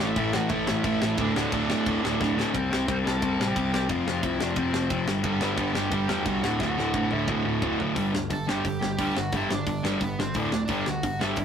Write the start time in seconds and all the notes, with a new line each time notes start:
Already playing: D5
0.00 A1 A2 E3 A3
0.09 E4 E5
0.16 A1 A2 E3 A3, kick, crash
0.33 A2 E3 A3 F#4 F#5, snare
0.49 A1 A2 E3 A3 E4 E5, kick, crash
0.67 A2 E3 A3 E4 E5, snare
0.84 A1 A2 E3 A3, kick, crash
1.02 A1 A2 E3 A3 E4 E5, snare
1.17 D1 D2 A2 D3, kick, crash
1.21 D4 D5
1.36 D1 D2 A2 D3, snare
1.52 D1 D2 A2 D3, kick, crash
1.69 D2 A2 D3, snare
1.86 D1 D2 A2 D3, kick, crash
2.03 D1 D2 A2 D3, snare
2.20 D1 D2 A2 D3, kick, snare
2.37 D2 A2 D3, snare
2.54 C2 C3 G3 C4, kick, ride
2.59 C5
2.70 C2 C3 G3 C4, snare
2.87 C2 C3 G3 C4, kick, ride
2.92 C5
3.05 C2 C3 G3 C4 A4 A5, snare
3.22 C2 C3 G3 C4, kick, ride
3.39 A1 C3 G3 C4, snare
3.48 G4 G5
3.56 C2 C3 G3 C4, kick, ride
3.73 C2 C3 G3 C4 G4 G5, snare
3.89 F1 F2 C3 F3 F4 F5, kick, ride
4.06 F1 F2 C3 F3, snare
4.23 C2 F2 C3 F3 E4 E5, kick, ride
4.39 F1 F2 C3 F3 D4 D5, snare
4.56 F1 F2 C3 F3 C4 C5, kick, ride
4.74 F1 F2 C3 F3, snare
4.90 F1 F2 C3 F3, kick, ride
5.07 G1 G2 D3 G3, snare
5.23 G1 G2 D3 G3 B3 B4, kick, ride
5.41 G1 G2 D3 G3, snare
5.56 G1 G2 D3 G3, kick, ride
5.74 G1 G2 D3 G3 G4 G5, snare
5.91 G1 G2 D3 G3, kick, ride
6.09 E2 G2 D3 G3, snare
6.20 F#4 F#5
6.25 C2 G2 D3 G3, kick, ride
6.42 D1 D2 A2 D3 F#4 F#5, snare
6.60 D1 D2 A2 D3 F#4 F#5, kick, snare
6.77 D1 D2 A2 D3, snare
6.94 A1 D2 A2 D3, kick
7.11 D1 D2 A2 D3 E4 E5, high tom
7.28 D1 D2 A2 D3 F#4 F#5, kick, mid tom
7.46 D1 D2 A2 D3
7.62 D1 D2 A2 D3, kick, floor tom
7.79 D1 D2 A2 D3, floor tom
7.96 G1 G2 D3 G3, kick, open hi-hat
8.12 D2 G2 D3, snare
8.30 G1 G2 D3 A4 A5, kick, open hi-hat
8.47 G1 G2 D3 G3 G4 G5, snare
8.65 G1 G2 D3, kick, open hi-hat
8.81 G1 G2 D3, snare
8.98 D2 G2 D3 G3, kick, open hi-hat
9.16 G1 G2 D3 F#4 F#5, snare
9.32 G1 G2 D3 G3 E4, kick, open hi-hat
9.37 E5
9.51 G1 G2 D3 D4 D5, snare
9.66 G1 G2 D3, kick, open hi-hat
9.83 G1 G2 D3 G3 D4 D5, snare
10.01 G1 G2 D3 B3 B4, kick, open hi-hat
10.19 G1 G2 D3 C4 C5, snare
10.34 D1 D2 A2 D3, kick, open hi-hat
10.39 D4 D5
10.52 D1 D2 A2, snare
10.65 D4 D5, kick, open hi-hat
10.69 G1 G2 D3 G3
10.86 D2 G2 D3 F#4 F#5, snare
11.03 G1 G2 D3, kick, open hi-hat
11.21 G1 G2 D3 G3 E4 E5, snare
11.36 G1 G2 D3, kick, open hi-hat